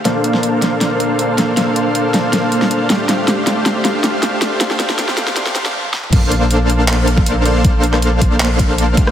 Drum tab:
CC |----------------|----------------|----------------|----------------|
HH |x-x-x-x-x-x-x-x-|x-x-x-x-x-x-x-x-|x-x-x-x-x-x-x-x-|x-x-x-x-x-x-----|
CP |----------------|----------------|----------------|----------------|
SD |o--o--o-o-----o-|o-----o-o--o--o-|o-o-o-o-o-o-o-o-|oooooooooooo--o-|
T1 |----------------|----------------|----------------|------------oo--|
T2 |----------------|----------------|----------------|---------------o|
BD |----------------|----------------|----------------|----------------|

CC |x---------------|----------------|
HH |x-x-x-x-x-x-x-x-|x-x-x-x-x-x-x-x-|
CP |--------x-------|---x----x-------|
SD |----------------|---r-----------r|
T1 |----------------|----------------|
T2 |----------------|----------------|
BD |o----------o----|o-----o---o---o-|